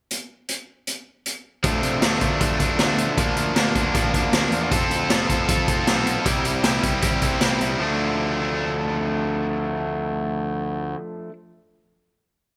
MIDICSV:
0, 0, Header, 1, 4, 480
1, 0, Start_track
1, 0, Key_signature, -1, "minor"
1, 0, Tempo, 384615
1, 126, Time_signature, 4, 2, 24, 8
1, 7806, Tempo, 387847
1, 15611, End_track
2, 0, Start_track
2, 0, Title_t, "Overdriven electric guitar"
2, 0, Program_c, 0, 29
2, 2036, Note_on_c, 0, 53, 75
2, 2057, Note_on_c, 0, 57, 76
2, 2067, Note_on_c, 0, 62, 84
2, 2516, Note_off_c, 0, 53, 0
2, 2519, Note_off_c, 0, 57, 0
2, 2521, Note_on_c, 0, 53, 74
2, 2534, Note_on_c, 0, 57, 80
2, 2548, Note_off_c, 0, 62, 0
2, 2553, Note_on_c, 0, 62, 79
2, 2756, Note_off_c, 0, 62, 0
2, 2761, Note_on_c, 0, 62, 63
2, 2773, Note_off_c, 0, 57, 0
2, 2788, Note_on_c, 0, 57, 51
2, 2990, Note_off_c, 0, 53, 0
2, 2995, Note_off_c, 0, 57, 0
2, 2995, Note_on_c, 0, 53, 65
2, 3004, Note_off_c, 0, 62, 0
2, 3010, Note_on_c, 0, 57, 61
2, 3019, Note_on_c, 0, 62, 64
2, 3219, Note_off_c, 0, 62, 0
2, 3234, Note_on_c, 0, 62, 69
2, 3246, Note_off_c, 0, 57, 0
2, 3261, Note_on_c, 0, 57, 53
2, 3481, Note_off_c, 0, 53, 0
2, 3481, Note_off_c, 0, 57, 0
2, 3486, Note_on_c, 0, 53, 69
2, 3492, Note_off_c, 0, 62, 0
2, 3496, Note_on_c, 0, 57, 66
2, 3507, Note_on_c, 0, 62, 73
2, 3956, Note_off_c, 0, 57, 0
2, 3959, Note_off_c, 0, 53, 0
2, 3962, Note_off_c, 0, 62, 0
2, 3964, Note_on_c, 0, 53, 76
2, 3982, Note_on_c, 0, 58, 84
2, 3995, Note_on_c, 0, 62, 88
2, 4440, Note_off_c, 0, 53, 0
2, 4445, Note_off_c, 0, 58, 0
2, 4445, Note_on_c, 0, 53, 73
2, 4451, Note_off_c, 0, 62, 0
2, 4460, Note_on_c, 0, 58, 91
2, 4466, Note_on_c, 0, 62, 78
2, 4670, Note_off_c, 0, 62, 0
2, 4685, Note_on_c, 0, 62, 62
2, 4702, Note_off_c, 0, 58, 0
2, 4717, Note_on_c, 0, 58, 47
2, 4908, Note_off_c, 0, 53, 0
2, 4913, Note_off_c, 0, 58, 0
2, 4913, Note_on_c, 0, 53, 65
2, 4926, Note_off_c, 0, 62, 0
2, 4928, Note_on_c, 0, 58, 62
2, 4941, Note_on_c, 0, 62, 71
2, 5147, Note_off_c, 0, 62, 0
2, 5162, Note_on_c, 0, 62, 62
2, 5176, Note_off_c, 0, 58, 0
2, 5191, Note_on_c, 0, 58, 54
2, 5392, Note_off_c, 0, 53, 0
2, 5407, Note_on_c, 0, 53, 59
2, 5411, Note_off_c, 0, 58, 0
2, 5424, Note_off_c, 0, 62, 0
2, 5426, Note_on_c, 0, 58, 71
2, 5439, Note_on_c, 0, 62, 68
2, 5863, Note_off_c, 0, 53, 0
2, 5878, Note_on_c, 0, 53, 72
2, 5881, Note_off_c, 0, 58, 0
2, 5887, Note_off_c, 0, 62, 0
2, 5889, Note_on_c, 0, 60, 81
2, 5898, Note_on_c, 0, 65, 83
2, 5907, Note_on_c, 0, 69, 89
2, 6342, Note_off_c, 0, 53, 0
2, 6357, Note_on_c, 0, 53, 81
2, 6361, Note_off_c, 0, 65, 0
2, 6363, Note_off_c, 0, 60, 0
2, 6368, Note_off_c, 0, 69, 0
2, 6368, Note_on_c, 0, 60, 86
2, 6376, Note_on_c, 0, 65, 88
2, 6383, Note_on_c, 0, 69, 86
2, 6592, Note_off_c, 0, 69, 0
2, 6607, Note_on_c, 0, 69, 63
2, 6610, Note_off_c, 0, 65, 0
2, 6625, Note_on_c, 0, 65, 54
2, 6633, Note_off_c, 0, 60, 0
2, 6638, Note_on_c, 0, 60, 54
2, 6828, Note_off_c, 0, 53, 0
2, 6842, Note_off_c, 0, 60, 0
2, 6843, Note_on_c, 0, 53, 63
2, 6846, Note_off_c, 0, 65, 0
2, 6856, Note_off_c, 0, 69, 0
2, 6857, Note_on_c, 0, 60, 68
2, 6861, Note_on_c, 0, 65, 69
2, 6871, Note_on_c, 0, 69, 74
2, 7069, Note_off_c, 0, 69, 0
2, 7084, Note_on_c, 0, 69, 66
2, 7086, Note_off_c, 0, 65, 0
2, 7098, Note_off_c, 0, 60, 0
2, 7101, Note_on_c, 0, 65, 66
2, 7112, Note_on_c, 0, 60, 54
2, 7318, Note_off_c, 0, 53, 0
2, 7333, Note_on_c, 0, 53, 65
2, 7334, Note_off_c, 0, 60, 0
2, 7338, Note_off_c, 0, 65, 0
2, 7346, Note_off_c, 0, 69, 0
2, 7349, Note_on_c, 0, 60, 62
2, 7353, Note_on_c, 0, 65, 68
2, 7361, Note_on_c, 0, 69, 68
2, 7788, Note_off_c, 0, 60, 0
2, 7793, Note_off_c, 0, 53, 0
2, 7798, Note_on_c, 0, 55, 78
2, 7803, Note_on_c, 0, 60, 75
2, 7804, Note_off_c, 0, 65, 0
2, 7809, Note_on_c, 0, 64, 76
2, 7811, Note_off_c, 0, 69, 0
2, 7820, Note_on_c, 0, 67, 91
2, 8267, Note_off_c, 0, 55, 0
2, 8273, Note_off_c, 0, 60, 0
2, 8281, Note_off_c, 0, 64, 0
2, 8281, Note_on_c, 0, 55, 76
2, 8288, Note_on_c, 0, 60, 74
2, 8295, Note_off_c, 0, 67, 0
2, 8296, Note_on_c, 0, 64, 84
2, 8310, Note_on_c, 0, 67, 82
2, 8500, Note_off_c, 0, 67, 0
2, 8514, Note_off_c, 0, 64, 0
2, 8514, Note_on_c, 0, 67, 58
2, 8527, Note_off_c, 0, 60, 0
2, 8529, Note_on_c, 0, 64, 56
2, 8542, Note_on_c, 0, 60, 51
2, 8743, Note_off_c, 0, 55, 0
2, 8750, Note_off_c, 0, 60, 0
2, 8754, Note_off_c, 0, 64, 0
2, 8758, Note_on_c, 0, 55, 59
2, 8764, Note_off_c, 0, 67, 0
2, 8765, Note_on_c, 0, 60, 64
2, 8769, Note_on_c, 0, 64, 63
2, 8779, Note_on_c, 0, 67, 77
2, 8978, Note_off_c, 0, 67, 0
2, 8993, Note_on_c, 0, 67, 63
2, 8994, Note_off_c, 0, 64, 0
2, 9006, Note_off_c, 0, 60, 0
2, 9009, Note_on_c, 0, 64, 62
2, 9021, Note_on_c, 0, 60, 59
2, 9221, Note_off_c, 0, 55, 0
2, 9225, Note_off_c, 0, 60, 0
2, 9232, Note_off_c, 0, 64, 0
2, 9236, Note_on_c, 0, 55, 70
2, 9240, Note_on_c, 0, 60, 74
2, 9247, Note_on_c, 0, 64, 69
2, 9249, Note_off_c, 0, 67, 0
2, 9264, Note_on_c, 0, 67, 69
2, 9699, Note_off_c, 0, 55, 0
2, 9704, Note_on_c, 0, 53, 77
2, 9707, Note_off_c, 0, 60, 0
2, 9710, Note_off_c, 0, 64, 0
2, 9719, Note_off_c, 0, 67, 0
2, 9732, Note_on_c, 0, 57, 82
2, 9754, Note_on_c, 0, 62, 89
2, 14035, Note_off_c, 0, 53, 0
2, 14064, Note_off_c, 0, 57, 0
2, 14086, Note_off_c, 0, 62, 0
2, 15611, End_track
3, 0, Start_track
3, 0, Title_t, "Picked electric bass"
3, 0, Program_c, 1, 34
3, 2046, Note_on_c, 1, 38, 81
3, 2224, Note_off_c, 1, 38, 0
3, 2273, Note_on_c, 1, 48, 72
3, 2455, Note_off_c, 1, 48, 0
3, 2521, Note_on_c, 1, 38, 72
3, 2701, Note_off_c, 1, 38, 0
3, 2765, Note_on_c, 1, 38, 76
3, 2943, Note_off_c, 1, 38, 0
3, 3004, Note_on_c, 1, 38, 78
3, 3182, Note_off_c, 1, 38, 0
3, 3243, Note_on_c, 1, 38, 72
3, 3421, Note_off_c, 1, 38, 0
3, 3474, Note_on_c, 1, 38, 71
3, 3833, Note_off_c, 1, 38, 0
3, 3960, Note_on_c, 1, 38, 83
3, 4139, Note_off_c, 1, 38, 0
3, 4184, Note_on_c, 1, 38, 76
3, 4369, Note_off_c, 1, 38, 0
3, 4427, Note_on_c, 1, 38, 78
3, 4611, Note_off_c, 1, 38, 0
3, 4681, Note_on_c, 1, 38, 83
3, 4860, Note_off_c, 1, 38, 0
3, 4918, Note_on_c, 1, 33, 81
3, 5098, Note_off_c, 1, 33, 0
3, 5162, Note_on_c, 1, 38, 72
3, 5340, Note_off_c, 1, 38, 0
3, 5380, Note_on_c, 1, 38, 75
3, 5566, Note_off_c, 1, 38, 0
3, 5624, Note_on_c, 1, 40, 72
3, 5882, Note_on_c, 1, 29, 82
3, 5900, Note_off_c, 1, 40, 0
3, 6060, Note_off_c, 1, 29, 0
3, 6112, Note_on_c, 1, 38, 77
3, 6294, Note_off_c, 1, 38, 0
3, 6355, Note_on_c, 1, 29, 74
3, 6537, Note_off_c, 1, 29, 0
3, 6606, Note_on_c, 1, 29, 80
3, 6783, Note_off_c, 1, 29, 0
3, 6846, Note_on_c, 1, 29, 79
3, 7024, Note_off_c, 1, 29, 0
3, 7085, Note_on_c, 1, 29, 79
3, 7264, Note_off_c, 1, 29, 0
3, 7326, Note_on_c, 1, 35, 73
3, 7682, Note_off_c, 1, 35, 0
3, 7809, Note_on_c, 1, 36, 83
3, 7985, Note_off_c, 1, 36, 0
3, 8030, Note_on_c, 1, 36, 76
3, 8213, Note_off_c, 1, 36, 0
3, 8277, Note_on_c, 1, 36, 81
3, 8457, Note_off_c, 1, 36, 0
3, 8524, Note_on_c, 1, 36, 76
3, 8701, Note_off_c, 1, 36, 0
3, 8758, Note_on_c, 1, 31, 76
3, 8937, Note_off_c, 1, 31, 0
3, 8997, Note_on_c, 1, 36, 73
3, 9177, Note_off_c, 1, 36, 0
3, 9235, Note_on_c, 1, 36, 76
3, 9416, Note_off_c, 1, 36, 0
3, 9483, Note_on_c, 1, 36, 71
3, 9661, Note_off_c, 1, 36, 0
3, 9722, Note_on_c, 1, 38, 77
3, 13599, Note_off_c, 1, 38, 0
3, 15611, End_track
4, 0, Start_track
4, 0, Title_t, "Drums"
4, 133, Note_on_c, 9, 42, 50
4, 257, Note_off_c, 9, 42, 0
4, 606, Note_on_c, 9, 42, 54
4, 731, Note_off_c, 9, 42, 0
4, 1086, Note_on_c, 9, 42, 49
4, 1211, Note_off_c, 9, 42, 0
4, 1569, Note_on_c, 9, 42, 46
4, 1694, Note_off_c, 9, 42, 0
4, 2043, Note_on_c, 9, 42, 75
4, 2048, Note_on_c, 9, 36, 102
4, 2168, Note_off_c, 9, 42, 0
4, 2172, Note_off_c, 9, 36, 0
4, 2284, Note_on_c, 9, 42, 53
4, 2409, Note_off_c, 9, 42, 0
4, 2520, Note_on_c, 9, 38, 99
4, 2520, Note_on_c, 9, 42, 75
4, 2641, Note_off_c, 9, 38, 0
4, 2641, Note_on_c, 9, 38, 27
4, 2645, Note_off_c, 9, 42, 0
4, 2758, Note_on_c, 9, 42, 53
4, 2765, Note_off_c, 9, 38, 0
4, 2765, Note_on_c, 9, 36, 75
4, 2883, Note_off_c, 9, 42, 0
4, 2889, Note_off_c, 9, 36, 0
4, 3004, Note_on_c, 9, 42, 76
4, 3006, Note_on_c, 9, 36, 101
4, 3129, Note_off_c, 9, 42, 0
4, 3130, Note_off_c, 9, 36, 0
4, 3242, Note_on_c, 9, 42, 53
4, 3245, Note_on_c, 9, 36, 74
4, 3367, Note_off_c, 9, 42, 0
4, 3370, Note_off_c, 9, 36, 0
4, 3480, Note_on_c, 9, 38, 88
4, 3480, Note_on_c, 9, 42, 66
4, 3604, Note_off_c, 9, 38, 0
4, 3604, Note_off_c, 9, 42, 0
4, 3723, Note_on_c, 9, 42, 54
4, 3848, Note_off_c, 9, 42, 0
4, 3964, Note_on_c, 9, 36, 99
4, 3965, Note_on_c, 9, 42, 80
4, 4088, Note_off_c, 9, 36, 0
4, 4089, Note_off_c, 9, 42, 0
4, 4201, Note_on_c, 9, 42, 55
4, 4326, Note_off_c, 9, 42, 0
4, 4442, Note_on_c, 9, 38, 98
4, 4442, Note_on_c, 9, 42, 72
4, 4566, Note_off_c, 9, 38, 0
4, 4566, Note_off_c, 9, 42, 0
4, 4685, Note_on_c, 9, 42, 53
4, 4686, Note_on_c, 9, 36, 72
4, 4810, Note_off_c, 9, 42, 0
4, 4811, Note_off_c, 9, 36, 0
4, 4925, Note_on_c, 9, 36, 103
4, 4925, Note_on_c, 9, 42, 76
4, 5050, Note_off_c, 9, 36, 0
4, 5050, Note_off_c, 9, 42, 0
4, 5166, Note_on_c, 9, 36, 72
4, 5169, Note_on_c, 9, 42, 53
4, 5291, Note_off_c, 9, 36, 0
4, 5294, Note_off_c, 9, 42, 0
4, 5402, Note_on_c, 9, 38, 92
4, 5402, Note_on_c, 9, 42, 61
4, 5527, Note_off_c, 9, 38, 0
4, 5527, Note_off_c, 9, 42, 0
4, 5640, Note_on_c, 9, 42, 45
4, 5765, Note_off_c, 9, 42, 0
4, 5884, Note_on_c, 9, 42, 67
4, 5886, Note_on_c, 9, 36, 100
4, 6008, Note_off_c, 9, 42, 0
4, 6011, Note_off_c, 9, 36, 0
4, 6127, Note_on_c, 9, 42, 48
4, 6252, Note_off_c, 9, 42, 0
4, 6365, Note_on_c, 9, 38, 97
4, 6365, Note_on_c, 9, 42, 79
4, 6490, Note_off_c, 9, 38, 0
4, 6490, Note_off_c, 9, 42, 0
4, 6609, Note_on_c, 9, 36, 72
4, 6610, Note_on_c, 9, 42, 59
4, 6734, Note_off_c, 9, 36, 0
4, 6735, Note_off_c, 9, 42, 0
4, 6848, Note_on_c, 9, 36, 105
4, 6848, Note_on_c, 9, 42, 81
4, 6972, Note_off_c, 9, 42, 0
4, 6973, Note_off_c, 9, 36, 0
4, 7087, Note_on_c, 9, 42, 53
4, 7089, Note_on_c, 9, 36, 77
4, 7212, Note_off_c, 9, 42, 0
4, 7214, Note_off_c, 9, 36, 0
4, 7329, Note_on_c, 9, 38, 91
4, 7329, Note_on_c, 9, 42, 71
4, 7453, Note_off_c, 9, 38, 0
4, 7453, Note_off_c, 9, 42, 0
4, 7572, Note_on_c, 9, 42, 54
4, 7697, Note_off_c, 9, 42, 0
4, 7809, Note_on_c, 9, 42, 77
4, 7810, Note_on_c, 9, 36, 94
4, 7932, Note_off_c, 9, 42, 0
4, 7933, Note_off_c, 9, 36, 0
4, 8046, Note_on_c, 9, 42, 58
4, 8169, Note_off_c, 9, 42, 0
4, 8279, Note_on_c, 9, 38, 103
4, 8279, Note_on_c, 9, 42, 74
4, 8403, Note_off_c, 9, 38, 0
4, 8403, Note_off_c, 9, 42, 0
4, 8522, Note_on_c, 9, 42, 58
4, 8523, Note_on_c, 9, 36, 73
4, 8645, Note_off_c, 9, 42, 0
4, 8647, Note_off_c, 9, 36, 0
4, 8757, Note_on_c, 9, 42, 75
4, 8764, Note_on_c, 9, 36, 103
4, 8880, Note_off_c, 9, 42, 0
4, 8887, Note_off_c, 9, 36, 0
4, 8996, Note_on_c, 9, 42, 51
4, 9002, Note_on_c, 9, 36, 75
4, 9120, Note_off_c, 9, 42, 0
4, 9126, Note_off_c, 9, 36, 0
4, 9233, Note_on_c, 9, 38, 88
4, 9233, Note_on_c, 9, 42, 62
4, 9357, Note_off_c, 9, 38, 0
4, 9357, Note_off_c, 9, 42, 0
4, 9480, Note_on_c, 9, 42, 49
4, 9604, Note_off_c, 9, 42, 0
4, 15611, End_track
0, 0, End_of_file